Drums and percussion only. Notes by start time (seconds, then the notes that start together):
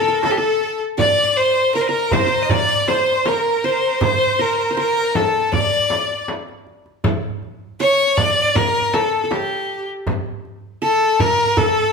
0.04 darbuka ka
0.23 darbuka tek, frame drum
0.42 darbuka ka
0.61 darbuka ka
0.80 darbuka ka
0.99 darbuka dum, frame drum
1.17 darbuka ka
1.36 darbuka ka
1.55 darbuka ka
1.74 darbuka ka
2.11 darbuka dum, frame drum
2.31 darbuka ka
2.49 darbuka dum, frame drum
2.88 darbuka tek, frame drum
3.07 darbuka ka
3.26 darbuka tek, frame drum
3.45 darbuka ka
3.82 darbuka ka
4.01 darbuka dum, frame drum
4.21 darbuka ka
4.40 darbuka ka
4.59 darbuka ka
4.77 darbuka ka
5.15 frame drum
5.34 darbuka ka
5.53 frame drum, darbuka dum
5.90 darbuka tek, frame drum
6.10 darbuka ka
6.28 darbuka tek, frame drum
6.48 darbuka ka
6.67 darbuka ka
6.86 darbuka ka
7.04 darbuka dum, frame drum
7.24 darbuka ka
7.43 darbuka ka
7.80 darbuka ka
8.18 darbuka dum, frame drum
8.37 darbuka ka
8.56 darbuka dum, frame drum
8.94 darbuka tek, frame drum
9.13 darbuka ka
9.31 darbuka tek, frame drum
9.51 darbuka ka
9.69 darbuka ka
9.88 darbuka ka
10.07 darbuka dum, frame drum
10.26 darbuka ka
10.45 darbuka ka
10.82 darbuka ka
11.20 darbuka dum, frame drum
11.38 darbuka ka
11.57 darbuka dum, frame drum